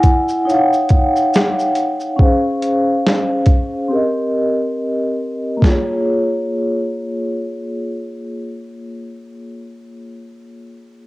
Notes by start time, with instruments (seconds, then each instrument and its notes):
Already playing: vibraphone E4 D5 F#5 G#5
0.03 kick, closed hi-hat, shaker
0.28 shaker
0.45 vibraphone D#4 C#5
0.49 vibraphone F5 F#5, shaker
0.58 vibraphone G5
0.73 shaker
0.89 kick, closed hi-hat, shaker
1.16 shaker
1.34 snare, shaker
1.59 shaker
1.75 closed hi-hat, shaker
2.00 shaker
2.16 vibraphone C#4 G#4, kick
2.21 vibraphone C5 F5
2.62 closed hi-hat
3.06 snare
3.46 kick, closed hi-hat
3.88 vibraphone C4 G4
3.92 vibraphone A#4 D#5
5.57 vibraphone A#3 F4
5.62 vibraphone G#4, kick, snare
5.69 vibraphone C#5